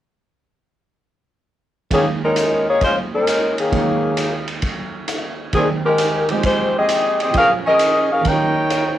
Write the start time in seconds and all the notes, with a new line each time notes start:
1.91 D#2 D#3 G#3 A#3 C#4 F4 G#4, kick, ride
2.25 G#3 C#4 D#4 A#4
2.36 hi-hat pedal, ride
2.69 A#3 D#4 G#4 C#5
2.81 G#3 C#4 F4 C5, kick, ride
3.14 G#3 C#4 D#4 A#4
3.27 hi-hat pedal, ride
3.58 D#3 A#3 C#4 G#4, ride
3.72 D#2 D#3 G#3 C#4 F4, kick, ride
4.17 hi-hat pedal, ride
4.47 ride
4.62 kick, ride
5.08 hi-hat pedal, ride
5.53 D#2 D#3 G3 A#3 C4 G#4 G5, kick, ride
5.86 G#3 D#4 G4 A#4
5.98 hi-hat pedal, ride
6.29 F3 G#3 C4 D#4 G4 C5, ride
6.43 G#3 D#4 G4 C5, kick, ride
6.78 C4 G4 G#4 D#5
6.88 hi-hat pedal, ride
7.20 C4 G4 G#4 D#5, ride
7.30 A#2 F3, ride
7.34 C#4 G#4 A#4 C5 F5, kick
7.41 G#4
7.66 C#4 G#4 A#4 D#5
7.79 hi-hat pedal, ride
8.12 C#4 G#4 A#4 F5
8.21 D#2 D#3
8.25 C#4 D#4 A#4 C#5 G5, kick, ride
8.29 F4 G4
8.70 C#5, hi-hat pedal, ride
8.87 C5